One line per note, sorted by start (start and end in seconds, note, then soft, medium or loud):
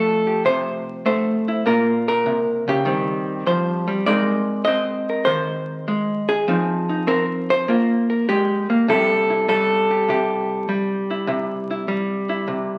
0.00 1.63 F3 medium
0.00 1.05 A3 medium
0.00 1.47 E4 soft
0.00 0.26 G4 soft
0.00 0.45 A4 medium
0.27 1.64 G4 soft
0.45 1.63 C3 medium
0.45 1.05 C5 loud
1.06 1.64 A3 medium
1.06 1.66 C5 medium
1.48 1.64 E4 soft
1.66 2.26 A#2 medium
1.66 2.86 A#3 medium
1.66 2.68 F4 medium
1.66 2.07 A#4 medium
2.08 2.86 A#4 loud
2.26 2.67 C3 medium
2.68 2.86 C#3 medium
2.68 4.07 G4 loud
2.85 3.46 D#3 medium
2.85 3.86 G3 soft
2.85 4.08 C4 soft
3.46 3.88 F3 medium
3.46 4.06 C5 medium
3.88 4.06 G3 medium
4.06 5.87 G#3 medium
4.06 4.67 C4 medium
4.06 6.45 D#4 soft
4.06 5.08 A#4 soft
4.06 4.64 D5 loud
4.65 5.87 C4 medium
4.65 5.24 D#5 loud
5.09 6.28 A#4 soft
5.25 6.45 D#3 medium
5.25 6.46 C5 medium
5.88 6.29 G#3 medium
6.29 7.07 G#4 loud
6.48 7.65 F3 medium
6.48 7.07 C4 soft
6.48 6.88 D#4 soft
6.89 7.65 D#4 soft
7.07 7.68 C4 medium
7.07 7.23 A#4 medium
7.50 8.88 C5 loud
7.68 8.28 A#3 medium
7.68 8.86 F4 soft
7.68 8.09 A#4 soft
8.10 8.28 A#4 soft
8.29 8.69 G#3 medium
8.29 8.88 G4 medium
8.70 8.88 A#3 medium
8.88 10.08 C3 medium
8.88 9.48 G3 soft
8.88 9.30 E4 soft
8.88 9.90 G4 medium
8.88 9.47 A4 medium
9.30 11.10 E4 soft
9.48 10.68 G3 medium
9.48 10.68 A4 medium
9.91 10.10 G4 soft
10.09 11.26 C3 medium
10.09 12.78 G4 medium
10.69 11.87 G3 medium
11.11 11.28 E4 soft
11.27 12.46 C3 medium
11.27 11.70 E4 soft
11.71 12.28 E4 soft
11.88 12.78 G3 medium
12.29 12.78 E4 soft
12.48 12.78 C3 medium